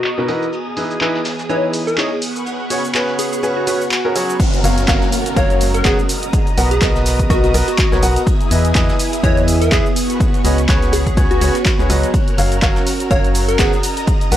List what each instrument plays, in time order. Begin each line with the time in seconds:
Already playing: ambient pad B3 G#4 A#5 D#6, digital synth lead F#4, analog synth pad D#5 A#5 D#6
0.04 clap, ride, shaker
0.17 grand piano B2 D#4 F#4 A#4 B4, snare
0.28 grand piano E3 D#4 F#4 A#4 B4, open hi-hat, ride, shaker
0.42 shaker
0.52 analog synth pad G#4, ride, shaker
0.62 ambient pad E3
0.77 grand piano E3 D#4 E4 G#4 B4, open hi-hat, ride, shaker
0.91 shaker
1.01 grand piano E3 D#4 E4 G#4 B4, clap, ride, shaker
1.15 ambient pad G#5, snare
1.24 snare, open hi-hat, ride, shaker
1.39 snare, shaker
1.49 grand piano E3 D#4 E4 G#4 B4, digital synth lead C#5, ride, shaker
1.73 open hi-hat, ride, shaker
1.87 digital synth lead A#4, shaker
1.98 grand piano D#4 E4 G#4 C#5, digital synth lead G#4, clap, ride, shaker
2.22 analog synth pad B4 F#5 C#6, open hi-hat, ride, shaker
2.36 shaker
2.45 ambient pad F#4, ride, shaker
2.59 ride
2.70 grand piano C#3 C#4 F#4 G#4 C#5, open hi-hat, ride, shaker
2.84 shaker
2.94 grand piano C#3 C#4 F#4 G#4 B4, clap, ride, shaker
3.08 snare
3.18 digital synth lead G#4, ambient pad C#5, open hi-hat, ride, shaker
3.32 digital synth lead G#4, shaker
3.43 grand piano C#3 C#4 F#4 G#4 B4, ride, swell, shaker
3.57 digital synth lead F#4
3.67 grand piano C#3 C#4 F#4 G#4 B4, open hi-hat, ride, shaker
3.81 shaker
3.91 clap, ride, shaker
4.05 grand piano C#3 C#4 F#4 G#4 A#4
4.16 grand piano F#3 C#4 F#4 G#4 C#5, open hi-hat, ride, shaker
4.30 shaker
4.39 ambient pad C#4, analog synth pad F#4 A#4 F6, kick, closed hi-hat, crash, ride, downlifter, shaker
4.53 closed hi-hat, shaker
4.64 fm bass F#1, grand piano F#3 F#4 A#4 C#5 F5, open hi-hat, ride, shaker
4.78 closed hi-hat, shaker
4.88 fm bass F#1, grand piano F#3 F#4 A#4 C#5 F5, kick, snare, clap, closed hi-hat, ride, shaker
5.02 snare, shaker
5.12 open hi-hat, ride, shaker
5.16 ambient pad A#5
5.26 closed hi-hat, shaker
5.36 fm bass F#1, grand piano F#3 F#4 A#4 C#5 F5, digital synth lead C#5, kick, closed hi-hat, ride, shaker
5.50 closed hi-hat, shaker
5.61 open hi-hat, ride, shaker
5.74 digital synth lead A#4, closed hi-hat, shaker
5.85 fm bass F#1, grand piano B3 F#4 A#4 C#5 F#5, digital synth lead G#4, kick, snare, clap, closed hi-hat, ride, shaker
5.99 shaker
6.09 ambient pad B3, analog synth pad D#5 A#5 D#6, open hi-hat, ride, shaker
6.23 ambient pad D#6, closed hi-hat, shaker
6.33 kick, closed hi-hat, ride, shaker
6.47 closed hi-hat, ride, shaker
6.57 fm bass B1, grand piano B3 F#4 A#4 B4 F#5, open hi-hat, ride, shaker
6.71 digital synth lead G#4, closed hi-hat, shaker
6.81 fm bass B1, grand piano B3 F#4 A#4 B4 D#5, kick, snare, clap, closed hi-hat, ride, shaker
6.95 snare, shaker
7.06 snare, open hi-hat, ride, shaker
7.19 kick, closed hi-hat, shaker
7.30 fm bass B1, grand piano B3 F#4 A#4 B4 D#5, digital synth lead F#4, kick, closed hi-hat, ride, shaker
7.44 digital synth lead F#4, closed hi-hat, shaker
7.54 fm bass B1, grand piano B3 F#4 A#4 B4 D#5, open hi-hat, ride, shaker
7.68 digital synth lead F#4, snare, closed hi-hat, shaker
7.78 kick, snare, clap, closed hi-hat, ride, shaker
7.92 fm bass B1, grand piano B3 F#4 A#4 B4 C#5, snare, shaker
8.03 fm bass B1, grand piano F#4 A#4 B4 F#5, open hi-hat, ride, shaker
8.16 closed hi-hat, shaker
8.27 analog synth pad E4 G#4 D#6, kick, closed hi-hat, ride, shaker
8.41 closed hi-hat, shaker
8.51 fm bass E2, grand piano E3 E4 G#4 B4 D#5, open hi-hat, ride, shaker
8.63 ambient pad E4, closed hi-hat, shaker
8.75 fm bass E2, grand piano E3 E4 G#4 B4 D#5, kick, snare, clap, closed hi-hat, ride, shaker
8.89 snare, shaker
8.99 open hi-hat, ride, shaker
9.04 ambient pad G#5
9.13 closed hi-hat, shaker
9.23 fm bass E2, grand piano E3 E4 G#4 B4 D#5, digital synth lead C#5, kick, closed hi-hat, ride, shaker
9.37 closed hi-hat, shaker
9.48 open hi-hat, ride, shaker
9.62 digital synth lead A#4, closed hi-hat, shaker
9.72 fm bass E2, grand piano E4 G#4 B4 E5, digital synth lead G#4, kick, snare, clap, closed hi-hat, ride, shaker
9.86 shaker
9.96 analog synth pad F#4 B4 C#6, open hi-hat, ride, shaker
10.10 closed hi-hat, shaker
10.20 kick, closed hi-hat, ride, shaker
10.34 closed hi-hat, ride, shaker
10.44 fm bass C#2, grand piano C#4 F#4 G#4 B4 D#5, ambient pad F#4, open hi-hat, ride, shaker
10.58 closed hi-hat, shaker
10.69 fm bass C#2, grand piano C#4 F#4 G#4 B4 C#5, kick, snare, clap, closed hi-hat, ride, shaker
10.82 snare, closed hi-hat, shaker
10.92 digital synth lead G#4, ambient pad C#5, snare, open hi-hat, ride, shaker
11.07 digital synth lead G#4, kick, closed hi-hat, shaker
11.17 fm bass C#2, grand piano C#4 F#4 G#4 B4 C#5, kick, closed hi-hat, ride, shaker
11.31 digital synth lead F#4, closed hi-hat, shaker
11.41 fm bass C#2, grand piano C#4 F#4 G#4 B4 C#5, open hi-hat, ride, shaker
11.55 snare, closed hi-hat, shaker
11.65 kick, snare, clap, closed hi-hat, ride, shaker
11.79 fm bass C#2, grand piano C#4 F#4 G#4 B4 C#5, snare, shaker
11.90 fm bass C#2, grand piano F#3 F#4 G#4 B4 D#5, open hi-hat, ride, shaker
12.03 closed hi-hat, shaker
12.14 ambient pad C#4, analog synth pad A#4 F6, kick, closed hi-hat, ride, shaker
12.28 closed hi-hat, shaker
12.38 fm bass F#1, grand piano F#3 F#4 A#4 C#5 F5, open hi-hat, ride, shaker
12.52 closed hi-hat, shaker
12.62 fm bass F#1, grand piano F#3 F#4 A#4 C#5 F5, kick, snare, clap, closed hi-hat, ride, shaker
12.76 snare, shaker
12.86 ambient pad A#5, open hi-hat, ride, shaker
13.00 closed hi-hat, shaker
13.11 fm bass F#1, grand piano F#3 F#4 A#4 C#5 F5, digital synth lead C#5, kick, closed hi-hat, ride, shaker
13.24 closed hi-hat, shaker
13.35 open hi-hat, ride, shaker
13.48 digital synth lead A#4, closed hi-hat, shaker
13.59 fm bass F#1, grand piano B3 F#4 A#4 C#5 F#5, digital synth lead G#4, kick, snare, clap, closed hi-hat, ride, shaker
13.73 shaker
13.83 ambient pad B3, analog synth pad D#5 A#5 D#6, open hi-hat, ride, shaker
13.97 closed hi-hat, shaker
14.07 kick, closed hi-hat, ride, shaker
14.21 closed hi-hat, ride, shaker
14.32 fm bass B1, grand piano B3 F#4 A#4 B4 F#5, open hi-hat, ride, shaker